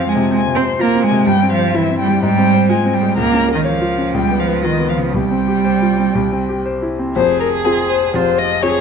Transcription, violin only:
0.00 0.10 F5 medium
0.09 0.32 G#5 medium
0.33 0.58 G#5 medium
0.57 0.83 C6 medium
0.81 1.04 A#5 medium
1.04 1.27 G#5 medium
1.27 1.51 G5 medium
1.52 1.77 F5 medium
1.75 1.98 E5 medium
1.99 2.22 G5 medium
2.23 2.69 G5 medium
2.70 2.95 G#5 medium
2.94 3.16 G5 medium
3.17 3.52 A#5 medium
3.53 3.65 D#5 medium
3.66 4.13 F5 medium
4.14 4.41 G5 medium
4.39 4.63 F5 medium
4.64 4.88 D#5 medium
4.89 4.97 F5 medium
5.13 6.63 G5 medium
7.16 7.39 C5 medium
7.40 7.48 A#4 medium
7.65 7.73 G#4 medium
7.89 8.13 C5 medium
8.14 8.40 C5 medium
8.38 8.64 D#5 medium
8.63 8.81 C#5 medium

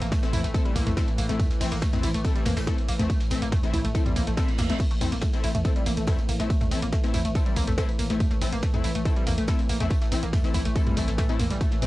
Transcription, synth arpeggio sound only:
0.01 0.06 A#3 medium
0.12 0.19 A3 medium
0.33 0.38 E4 loud
0.44 0.49 A3 medium
0.54 0.62 A4 medium
0.65 0.72 G3 loud
0.76 0.81 A#3 loud
0.87 0.91 A3 medium
0.97 1.02 A4 medium
1.18 1.23 A#3 medium
1.29 1.36 A3 medium
1.39 1.47 A3 medium
1.61 1.64 C4 medium
1.72 1.76 A#3 medium
1.82 1.89 A3 medium
2.03 2.08 E4 loud
2.14 2.19 A3 medium
2.25 2.32 A4 medium
2.36 2.43 G3 loud
2.46 2.51 A#3 loud
2.57 2.61 A3 medium
2.67 2.72 A4 medium
2.88 2.93 A#3 medium
2.99 3.06 A3 medium
3.10 3.17 A3 medium
3.31 3.34 C4 medium
3.42 3.47 A#3 medium
3.52 3.60 A3 medium
3.74 3.78 E4 loud
3.85 3.89 A3 medium
3.95 4.02 A4 medium
4.06 4.13 G3 loud
4.16 4.21 A#3 loud
4.27 4.32 A3 medium
4.37 4.42 A4 medium
4.59 4.64 A#3 medium
4.70 4.77 A3 medium
4.80 4.87 A3 medium
4.91 4.94 A3 medium
5.01 5.04 C4 medium
5.12 5.17 A#3 medium
5.22 5.30 A3 medium
5.44 5.49 E4 loud
5.55 5.59 A3 medium
5.65 5.72 A4 medium
5.76 5.83 G3 loud
5.86 5.91 A#3 loud
5.97 6.02 A3 medium
6.08 6.13 A4 medium
6.29 6.34 A#3 medium
6.40 6.47 A3 medium
6.50 6.58 A3 medium
6.61 6.64 A3 medium
6.71 6.74 C4 medium
6.83 6.87 A#3 medium
6.93 7.00 A3 medium
7.14 7.19 E4 loud
7.25 7.30 A3 medium
7.35 7.43 A4 medium
7.46 7.53 G3 loud
7.56 7.61 A#3 loud
7.67 7.72 A3 medium
7.78 7.83 A4 medium
7.99 8.04 A#3 medium
8.10 8.17 A3 medium
8.20 8.28 A3 medium
8.31 8.34 A3 medium
8.42 8.45 C4 medium
8.53 8.57 A#3 medium
8.63 8.70 A3 medium
8.84 8.89 E4 loud
8.95 9.00 A3 medium
9.05 9.13 A4 medium
9.16 9.23 G3 loud
9.27 9.32 A#3 loud
9.38 9.42 A3 medium
9.48 9.53 A4 medium
9.69 9.74 A#3 medium
9.80 9.87 A3 medium
9.91 9.98 A3 medium
10.02 10.04 A3 medium
10.12 10.15 C4 medium
10.23 10.27 A#3 medium
10.33 10.41 A3 medium
10.54 10.59 E4 loud
10.65 10.70 A3 medium
10.76 10.83 A4 medium
10.87 10.94 G3 loud
10.97 11.00 A3 medium
11.08 11.13 A3 medium
11.18 11.23 A3 loud
11.39 11.44 A#3 loud
11.51 11.53 G3 medium
11.61 11.68 A3 medium
11.72 11.75 A3 medium
11.82 11.85 C4 medium

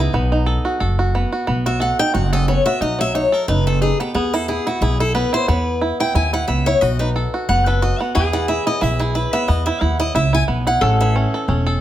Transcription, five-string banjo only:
0.00 0.14 B3 medium
0.00 0.14 E4 medium
0.14 0.83 B3 medium
0.32 0.83 D#4 medium
0.46 0.79 A4 medium
0.65 0.98 F#4 medium
0.80 1.29 A4 medium
0.99 1.32 F#4 medium
1.15 1.47 B3 medium
1.32 1.66 F#4 medium
1.47 2.36 B3 medium
1.66 2.13 F#4 medium
1.80 2.29 A4 medium
1.99 2.45 D#4 medium
2.14 2.62 F#4 medium
2.33 2.78 A4 medium
2.48 3.35 B3 medium
2.66 3.12 F#4 medium
2.81 3.14 D#4 medium
2.99 3.45 F#3 medium
3.15 3.47 D#4 medium
3.32 3.66 A4 medium
3.49 3.80 D#4 medium
3.67 4.12 A4 medium
3.81 4.15 D#4 medium
4.00 4.15 B3 medium
4.15 5.14 B3 medium
4.34 4.49 E4 medium
4.49 4.65 E4 medium
4.67 4.81 E4 medium
4.82 4.99 E4 medium
5.00 5.32 E4 medium
5.15 5.48 B3 medium
5.33 5.78 E4 medium
5.48 6.48 B3 medium
5.81 5.99 E4 medium
6.00 6.14 E4 medium
6.15 6.32 E4 medium
6.33 6.66 E4 medium
6.48 7.19 B3 medium
6.67 6.82 E4 medium
6.82 7.30 F#4 medium
7.00 7.45 D#4 medium
7.16 7.63 A4 medium
7.34 7.79 F#4 medium
7.49 8.00 B3 medium
7.67 8.12 A4 medium
7.82 8.15 F#4 medium
8.00 9.33 B3 medium
8.15 8.48 E4 medium
8.33 9.73 E3 medium
8.49 8.67 E4 medium
8.67 8.81 E4 medium
8.81 9.00 E4 medium
9.00 9.15 E4 medium
9.15 9.67 E4 medium
9.33 9.47 B3 medium
9.48 9.96 B3 medium
9.67 9.80 E4 medium
9.81 9.99 E4 medium
10.00 10.14 E4 medium
10.15 10.32 E4 medium
10.33 10.65 E4 medium
10.48 10.81 B3 medium
10.67 10.82 E4 medium
10.82 11.14 C#4 medium
11.01 11.46 E3 medium
11.16 11.47 C#4 medium
11.34 11.65 A4 medium
11.49 11.80 C#4 medium
11.67 11.81 A4 medium

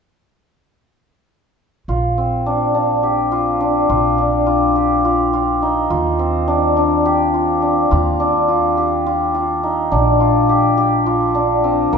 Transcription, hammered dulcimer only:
1.89 3.31 F4 medium
2.18 6.18 C4 soft
2.46 2.74 D4 soft
2.75 3.60 D4 soft
3.03 4.75 G4 soft
3.32 3.89 F4 soft
3.60 4.18 D4 medium
3.89 4.46 F4 medium
4.18 5.68 D4 soft
4.46 5.04 F4 soft
4.76 7.05 G4 soft
5.05 5.33 F4 soft
5.33 5.90 F4 soft
5.62 6.54 D#4 soft
5.90 7.34 F4 medium
6.19 10.19 C4 soft
6.48 6.76 D4 medium
6.77 7.62 D4 medium
7.05 8.77 G4 medium
7.34 7.91 F4 soft
7.62 8.19 D4 soft
7.91 8.48 F4 medium
8.20 9.69 D4 medium
8.48 9.06 F4 soft
8.77 10.49 G4 soft
9.06 9.34 F4 medium
9.35 10.20 F4 soft
9.63 9.98 D#4 soft
9.92 11.34 D4 medium
10.20 11.06 F4 soft
10.49 10.77 G4 medium
10.77 11.98 G4 medium
11.06 11.98 F4 medium
11.35 11.98 D4 medium
11.64 11.98 C4 medium
11.92 11.98 A#3 medium

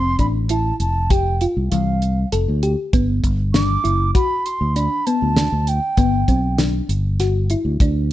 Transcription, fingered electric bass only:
0.00 0.14 F1 medium
0.19 0.71 A1 medium
0.80 1.45 F1 medium
1.57 1.69 C2 medium
1.72 2.24 C2 medium
2.33 2.45 F1 medium
2.48 2.74 D2 medium
2.94 3.19 G1 medium
3.24 3.76 G1 medium
3.85 4.11 F#1 medium
4.61 4.87 D2 medium
5.22 5.48 D2 medium
5.52 5.78 D2 medium
5.97 6.23 G1 medium
6.28 6.80 B1 medium
6.89 7.54 G1 medium
7.65 7.78 D2 medium
7.80 8.13 D2 medium

